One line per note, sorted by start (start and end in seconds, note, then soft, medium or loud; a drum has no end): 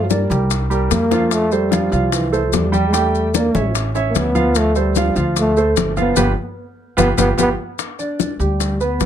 0.00 0.24 G2 medium
0.04 0.13 F#3 medium
0.10 0.51 G3 medium
0.10 0.27 A#3 medium
0.10 0.27 A#4 medium
0.10 0.27 D5 medium
0.10 high bongo medium
0.10 high conga medium
0.10 maracas medium
0.30 0.87 C2 medium
0.30 0.63 G3 medium
0.30 0.64 G4 medium
0.30 0.64 A#4 medium
0.30 high bongo soft
0.30 high conga medium
0.30 maracas soft
0.51 high bongo medium
0.51 high conga soft
0.51 maracas medium
0.70 1.04 G3 medium
0.70 1.04 G4 medium
0.70 1.04 A#4 medium
0.70 high bongo soft
0.70 high conga soft
0.70 maracas soft
0.91 1.86 F2 medium
0.91 1.34 A#3 loud
0.91 high bongo medium
0.91 low bongo medium
0.91 high conga medium
0.91 maracas medium
1.11 1.44 F3 medium
1.11 1.45 F4 medium
1.11 1.45 F5 medium
1.11 high bongo medium
1.11 high conga medium
1.11 maracas soft
1.31 1.54 A3 loud
1.31 high bongo medium
1.31 maracas medium
1.51 2.15 G3 medium
1.51 1.68 A3 medium
1.51 1.68 A4 medium
1.51 1.69 C5 medium
1.51 high conga soft
1.51 maracas soft
1.71 1.88 F3 medium
1.71 1.88 F4 medium
1.71 1.88 F5 medium
1.71 high bongo medium
1.71 high conga medium
1.71 maracas medium
1.91 2.49 C2 medium
1.91 2.25 F3 medium
1.91 2.25 F4 medium
1.91 2.25 F5 medium
1.91 maracas soft
2.12 2.46 E3 medium
2.12 high bongo medium
2.12 high conga soft
2.12 maracas medium
2.32 2.66 A3 medium
2.32 2.66 A4 medium
2.32 2.66 C5 medium
2.32 high conga soft
2.32 maracas soft
2.46 2.55 F3 medium
2.52 3.48 E2 medium
2.52 2.87 G3 medium
2.52 high bongo medium
2.52 low bongo medium
2.52 high conga medium
2.52 maracas medium
2.72 2.89 G3 medium
2.72 2.89 G4 medium
2.72 2.90 G5 medium
2.72 high conga medium
2.72 maracas soft
2.87 2.97 G#3 medium
2.92 3.26 G3 medium
2.92 3.35 A3 medium
2.92 3.27 G4 medium
2.92 3.27 G5 medium
2.92 high bongo medium
2.92 high conga soft
2.92 maracas medium
3.15 high conga soft
3.15 maracas soft
3.34 3.51 A#3 medium
3.34 3.73 A#3 medium
3.34 3.51 A#4 medium
3.34 3.51 D5 medium
3.34 high bongo medium
3.34 high conga medium
3.34 maracas medium
3.55 4.11 A1 loud
3.55 3.88 C#4 medium
3.55 3.88 C#5 medium
3.55 3.88 E5 medium
3.55 high bongo soft
3.55 high conga loud
3.55 maracas soft
3.75 high bongo medium
3.75 high conga soft
3.75 maracas medium
3.95 4.28 C#4 medium
3.95 4.28 C#5 medium
3.95 4.29 E5 medium
3.95 high bongo soft
3.95 high conga soft
3.95 maracas soft
4.10 4.18 A#3 medium
4.15 5.10 D2 medium
4.15 4.59 B3 loud
4.15 high bongo medium
4.15 low bongo medium
4.15 high conga medium
4.15 maracas medium
4.35 4.68 F3 medium
4.35 4.68 F4 medium
4.35 4.68 F5 medium
4.35 high bongo soft
4.35 high conga medium
4.35 maracas soft
4.55 4.79 A3 loud
4.55 high bongo medium
4.55 maracas medium
4.75 5.17 G3 medium
4.75 4.92 A3 medium
4.75 4.92 A4 medium
4.75 4.93 C5 medium
4.75 high conga soft
4.75 maracas soft
4.95 5.13 F3 medium
4.95 5.13 F4 medium
4.95 5.13 F5 medium
4.95 high bongo medium
4.95 high conga medium
4.95 maracas medium
5.16 5.73 D2 loud
5.16 5.49 F3 medium
5.16 5.50 F4 medium
5.16 5.49 F5 medium
5.16 high conga soft
5.16 maracas soft
5.36 5.76 A3 medium
5.36 high bongo medium
5.36 high conga soft
5.36 maracas medium
5.57 5.90 A3 medium
5.57 5.90 A4 medium
5.57 5.90 C5 medium
5.57 high conga soft
5.57 maracas soft
5.76 6.14 G1 medium
5.76 high bongo medium
5.76 low bongo medium
5.76 high conga medium
5.76 maracas medium
5.97 6.14 F3 medium
5.97 6.17 B3 medium
5.97 6.14 F4 medium
5.97 6.14 F5 medium
5.97 high conga medium
5.97 maracas soft
6.16 6.32 G1 medium
6.16 6.28 B3 medium
6.16 6.30 F4 medium
6.16 6.30 G4 medium
6.16 6.30 B4 loud
6.16 low bongo medium
6.16 high conga medium
6.16 maracas loud
6.97 7.13 G1 loud
6.97 7.09 B3 medium
6.97 7.10 F4 loud
6.97 7.11 G4 loud
6.97 7.11 B4 loud
6.97 low bongo loud
6.97 high conga medium
6.97 maracas medium
7.17 7.33 G1 loud
7.17 7.29 B3 medium
7.17 7.31 F4 loud
7.17 7.31 G4 loud
7.17 7.31 B4 medium
7.17 low bongo medium
7.17 high conga medium
7.17 maracas loud
7.38 7.53 G1 medium
7.38 7.50 B3 loud
7.38 7.51 F4 medium
7.38 7.51 G4 loud
7.38 7.51 B4 medium
7.38 low bongo medium
7.38 high conga loud
7.38 maracas medium
7.79 high bongo medium
7.79 high conga soft
7.79 maracas medium
7.99 8.32 D4 medium
7.99 8.33 D5 medium
7.99 high conga soft
7.99 maracas soft
8.20 high bongo medium
8.20 high conga medium
8.20 maracas medium
8.39 8.96 D2 medium
8.39 8.83 G3 medium
8.39 8.73 G4 medium
8.39 8.73 G5 medium
8.39 high conga soft
8.39 maracas soft
8.60 high bongo medium
8.60 high conga soft
8.60 maracas medium
8.81 9.06 B3 medium
8.81 9.06 B4 medium
8.81 high conga soft
8.81 maracas soft
9.00 9.06 A#1 medium
9.00 high bongo medium
9.00 low bongo medium
9.00 high conga medium
9.00 maracas medium